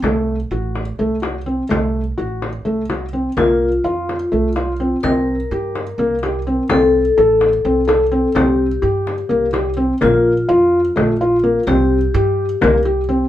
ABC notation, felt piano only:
X:1
M:7/8
L:1/8
Q:1/4=126
K:Aphr
V:1 name="Felt piano"
A,2 ^F2 A, F C | A,2 ^F2 A, F C | B,2 F2 A, F C | C2 G2 B, G C |
C2 A2 C A C | C2 G2 B, G C | B,2 F2 A, F B, | C2 G2 B, G C |]